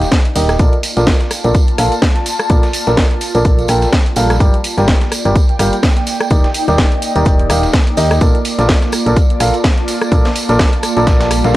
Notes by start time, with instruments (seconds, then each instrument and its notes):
Already playing: analog synth pad A#3 D#4 D5 G5
0.02 snare, closed hi-hat, tambourine
0.12 kick, snare, closed hi-hat, tambourine
0.25 closed hi-hat
0.36 fm bass D#1, upright piano D#4 G4 A#4 D#5, open hi-hat, tambourine
0.49 cross-stick, snare, closed hi-hat, tambourine
0.59 fm bass A#1, upright piano A#3 F4 A4 A#4 D5, analog synth pad F4, kick, closed hi-hat, tambourine
0.73 closed hi-hat
0.83 closed hi-hat, open hi-hat, tambourine
0.97 fm bass A#1, upright piano A#3 F4 A4 A#4 D5, snare, closed hi-hat, tambourine
1.07 kick, snare, closed hi-hat, tambourine
1.12 analog synth pad A5
1.21 snare, closed hi-hat
1.31 cross-stick, closed hi-hat, open hi-hat, tambourine
1.44 fm bass A#1, upright piano A#3 F4 A4 A#4 D5, closed hi-hat, tambourine
1.55 kick, closed hi-hat, tambourine
1.68 closed hi-hat
1.78 fm bass A#1, upright piano A#3 F4 A4 A#4 F5, cross-stick, closed hi-hat, open hi-hat, tambourine
1.92 closed hi-hat, tambourine
2.02 kick, snare, closed hi-hat, tambourine
2.16 snare, closed hi-hat
2.26 snare, closed hi-hat, open hi-hat, tambourine
2.39 cross-stick, closed hi-hat, tambourine
2.50 fm bass A#1, upright piano A#3 F4 A4 A#4 D5, kick, closed hi-hat, tambourine
2.63 snare, closed hi-hat, tambourine
2.73 closed hi-hat, open hi-hat, tambourine
2.87 fm bass A#1, upright piano A#3 F4 A4 A#4 D5, snare, closed hi-hat, tambourine
2.97 kick, snare, closed hi-hat, tambourine
3.11 closed hi-hat
3.21 closed hi-hat, open hi-hat, tambourine
3.35 fm bass A#1, upright piano A#3 F4 A4 A#4 D5, closed hi-hat, tambourine
3.45 kick, closed hi-hat, tambourine
3.58 closed hi-hat, tambourine
3.68 fm bass A#1, upright piano A#3 F4 A4 A#4 G5, cross-stick, closed hi-hat, open hi-hat, tambourine
3.82 snare, closed hi-hat, tambourine
3.93 kick, snare, closed hi-hat, tambourine
4.06 closed hi-hat
4.16 fm bass A#1, upright piano G3 F4 A4 A#4 F5, open hi-hat, tambourine
4.30 cross-stick, snare, closed hi-hat, tambourine
4.40 fm bass G1, upright piano G3 F4 G4 A#4 D5, kick, closed hi-hat, tambourine
4.52 analog synth pad A#3, closed hi-hat
4.64 analog synth pad D5, closed hi-hat, open hi-hat, tambourine
4.78 fm bass G1, upright piano G3 F4 G4 A#4 D5, snare, closed hi-hat, tambourine
4.87 analog synth pad G5, kick, snare, closed hi-hat, tambourine
5.01 snare, closed hi-hat
5.12 cross-stick, closed hi-hat, open hi-hat, tambourine
5.25 fm bass G1, upright piano G3 F4 G4 A#4 D5, closed hi-hat, tambourine
5.35 kick, closed hi-hat, tambourine
5.49 closed hi-hat
5.59 fm bass G1, upright piano G3 F4 G4 A#4 F5, cross-stick, closed hi-hat, open hi-hat, tambourine
5.73 closed hi-hat, tambourine
5.83 kick, snare, closed hi-hat, tambourine
5.97 snare, closed hi-hat
6.07 analog synth pad D#4, snare, closed hi-hat, open hi-hat, tambourine
6.20 cross-stick, closed hi-hat, tambourine
6.30 fm bass D#1, upright piano D#3 D#4 G4 A#4 D5, kick, closed hi-hat, tambourine
6.44 snare, closed hi-hat
6.54 closed hi-hat, open hi-hat, tambourine
6.68 fm bass D#1, upright piano D#3 D#4 G4 A#4 D5, snare, closed hi-hat, tambourine
6.78 kick, snare, closed hi-hat, tambourine
6.92 closed hi-hat
7.02 closed hi-hat, open hi-hat, tambourine
7.15 fm bass D#1, upright piano D#3 D#4 G4 A#4 D5, closed hi-hat, tambourine
7.25 kick, closed hi-hat, tambourine
7.39 closed hi-hat
7.50 fm bass D#1, upright piano D#3 D#4 G4 A#4 F5, cross-stick, closed hi-hat, open hi-hat, tambourine
7.63 snare, closed hi-hat, tambourine
7.73 kick, snare, closed hi-hat, tambourine
7.87 closed hi-hat
7.97 fm bass D#2, upright piano D#4 G4 A#4 D#5, open hi-hat, tambourine
8.11 cross-stick, snare, closed hi-hat, tambourine
8.21 fm bass A#1, upright piano A#3 F4 A4 A#4 D5, analog synth pad F4, kick, closed hi-hat, tambourine
8.35 closed hi-hat
8.45 closed hi-hat, open hi-hat, tambourine
8.59 fm bass A#1, upright piano A#3 F4 A4 A#4 D5, snare, closed hi-hat, tambourine
8.69 kick, snare, closed hi-hat, tambourine
8.82 snare, closed hi-hat
8.92 cross-stick, closed hi-hat, open hi-hat, tambourine
9.04 fm bass A#1, upright piano A#3 F4 A4 A#4 D5, analog synth pad A5, closed hi-hat, tambourine
9.16 kick, closed hi-hat, tambourine
9.30 closed hi-hat
9.40 fm bass A#1, upright piano A#3 F4 A4 A#4 F5, cross-stick, closed hi-hat, open hi-hat, tambourine
9.54 closed hi-hat, tambourine
9.64 kick, snare, closed hi-hat, tambourine
9.78 snare, closed hi-hat
9.88 snare, closed hi-hat, open hi-hat, tambourine
10.01 cross-stick, closed hi-hat, tambourine
10.12 fm bass A#1, upright piano A#3 F4 A4 A#4 D5, kick, closed hi-hat, tambourine
10.25 snare, closed hi-hat, tambourine
10.36 closed hi-hat, open hi-hat, tambourine
10.49 fm bass A#1, upright piano A#3 F4 A4 A#4 D5, snare, closed hi-hat, tambourine
10.59 kick, snare, closed hi-hat, tambourine
10.73 closed hi-hat
10.83 cross-stick, closed hi-hat, open hi-hat, tambourine
10.97 fm bass A#1, upright piano A#3 F4 A4 A#4 D5, closed hi-hat, tambourine
11.07 kick, snare, closed hi-hat, tambourine, swell
11.20 snare, closed hi-hat, tambourine
11.31 cross-stick, closed hi-hat, open hi-hat, tambourine
11.44 fm bass A#1, upright piano A#3 F4 A4 A#4 F5, snare, closed hi-hat, tambourine